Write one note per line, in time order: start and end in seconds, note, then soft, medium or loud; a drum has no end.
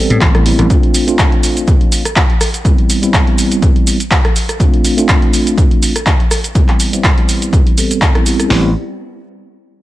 0.00 0.31 G3 medium
0.00 0.31 B3 medium
0.00 0.31 C4 medium
0.00 0.31 A4 medium
0.10 0.17 A2 loud
0.10 closed hi-hat medium
0.21 0.51 A1 loud
0.21 kick loud
0.21 clap loud
0.21 closed hi-hat soft
0.34 0.43 G3 medium
0.34 0.43 B3 medium
0.34 0.43 C4 medium
0.34 0.43 E4 medium
0.34 cross-stick medium
0.34 closed hi-hat soft
0.45 0.67 G3 medium
0.45 0.67 B3 medium
0.45 0.67 C4 medium
0.45 0.68 E4 medium
0.45 open hi-hat loud
0.59 0.66 A1 loud
0.59 cross-stick medium
0.59 closed hi-hat soft
0.70 1.04 A3 medium
0.70 1.04 C4 medium
0.70 1.05 D4 medium
0.70 1.05 F4 loud
0.70 kick loud
0.70 closed hi-hat medium
0.70 shaker soft
0.83 closed hi-hat soft
0.94 open hi-hat loud
0.94 shaker medium
1.07 2.02 A3 medium
1.07 2.02 C4 medium
1.07 2.02 D4 medium
1.07 2.02 F4 loud
1.07 closed hi-hat soft
1.07 shaker soft
1.19 kick loud
1.19 clap loud
1.19 closed hi-hat soft
1.19 shaker soft
1.32 closed hi-hat soft
1.43 open hi-hat loud
1.43 shaker medium
1.57 closed hi-hat soft
1.57 shaker soft
1.68 kick loud
1.68 closed hi-hat soft
1.68 shaker soft
1.81 closed hi-hat soft
1.92 open hi-hat loud
1.92 shaker medium
2.05 cross-stick medium
2.05 closed hi-hat medium
2.05 shaker soft
2.16 kick loud
2.16 clap loud
2.16 closed hi-hat soft
2.16 shaker soft
2.30 closed hi-hat soft
2.41 cross-stick medium
2.41 open hi-hat loud
2.41 shaker medium
2.54 closed hi-hat soft
2.54 shaker soft
2.64 2.99 G3 medium
2.64 2.99 B3 medium
2.64 2.99 C4 medium
2.64 3.00 E4 medium
2.64 kick loud
2.64 closed hi-hat soft
2.64 shaker soft
2.78 closed hi-hat soft
2.90 open hi-hat loud
2.90 shaker medium
3.02 3.97 G3 medium
3.02 3.97 B3 medium
3.02 3.97 C4 medium
3.02 3.97 E4 medium
3.02 closed hi-hat medium
3.02 shaker soft
3.14 kick loud
3.14 clap loud
3.14 closed hi-hat medium
3.14 shaker soft
3.27 closed hi-hat soft
3.38 open hi-hat loud
3.38 shaker medium
3.52 closed hi-hat medium
3.52 shaker soft
3.62 kick loud
3.62 closed hi-hat medium
3.62 shaker soft
3.76 closed hi-hat soft
3.87 open hi-hat loud
3.87 shaker medium
4.00 closed hi-hat medium
4.00 shaker soft
4.11 kick loud
4.11 clap loud
4.11 closed hi-hat medium
4.11 shaker soft
4.25 cross-stick medium
4.25 closed hi-hat soft
4.36 open hi-hat loud
4.36 shaker medium
4.49 cross-stick medium
4.49 closed hi-hat medium
4.49 shaker soft
4.59 4.94 A3 medium
4.59 4.94 C4 medium
4.59 4.95 D4 medium
4.59 4.95 F4 loud
4.59 kick loud
4.59 closed hi-hat medium
4.59 shaker soft
4.74 closed hi-hat soft
4.84 open hi-hat loud
4.84 shaker medium
4.97 5.92 A3 medium
4.97 5.92 C4 medium
4.97 5.92 D4 medium
4.97 5.93 F4 loud
4.97 closed hi-hat medium
4.97 shaker soft
5.08 kick loud
5.08 clap loud
5.08 closed hi-hat medium
5.08 shaker soft
5.22 closed hi-hat soft
5.33 open hi-hat loud
5.33 shaker medium
5.47 closed hi-hat medium
5.47 shaker soft
5.58 kick loud
5.58 closed hi-hat medium
5.58 shaker soft
5.71 closed hi-hat soft
5.83 open hi-hat loud
5.83 shaker medium
5.96 cross-stick medium
5.96 closed hi-hat medium
5.96 shaker soft
6.06 kick loud
6.06 clap loud
6.06 closed hi-hat medium
6.06 shaker soft
6.20 closed hi-hat soft
6.31 cross-stick medium
6.31 open hi-hat loud
6.31 shaker medium
6.44 closed hi-hat medium
6.44 shaker soft
6.55 6.89 G3 medium
6.55 6.90 B3 medium
6.55 6.90 C4 medium
6.55 6.90 E4 medium
6.55 kick loud
6.55 closed hi-hat medium
6.55 shaker soft
6.68 clap soft
6.68 closed hi-hat soft
6.80 open hi-hat loud
6.80 shaker medium
6.92 7.75 G3 medium
6.92 7.75 B3 medium
6.92 7.75 C4 medium
6.92 7.75 E4 medium
6.92 closed hi-hat medium
6.92 shaker soft
7.04 kick loud
7.04 clap loud
7.04 closed hi-hat medium
7.04 shaker soft
7.18 closed hi-hat soft
7.29 open hi-hat loud
7.29 shaker medium
7.42 closed hi-hat medium
7.42 shaker soft
7.53 kick loud
7.53 closed hi-hat medium
7.53 shaker soft
7.67 closed hi-hat soft
7.77 8.12 G3 medium
7.77 8.12 B3 medium
7.77 8.12 C4 medium
7.77 8.12 A4 medium
7.77 open hi-hat loud
7.77 shaker medium
7.91 closed hi-hat medium
7.91 shaker soft
8.02 kick loud
8.02 clap loud
8.02 closed hi-hat medium
8.02 shaker soft
8.15 8.23 G3 medium
8.15 8.23 B3 medium
8.15 8.23 C4 medium
8.15 8.24 E4 medium
8.15 cross-stick medium
8.15 closed hi-hat soft
8.26 8.48 G3 medium
8.26 8.48 B3 medium
8.26 8.48 C4 medium
8.26 8.48 E4 medium
8.26 open hi-hat loud
8.26 shaker medium
8.40 cross-stick medium
8.40 closed hi-hat medium
8.40 shaker soft
8.49 8.73 A1 medium
8.49 8.68 G3 medium
8.49 8.69 B3 medium
8.49 8.69 C4 medium
8.49 8.70 E4 medium
8.49 snare loud
8.49 open hi-hat medium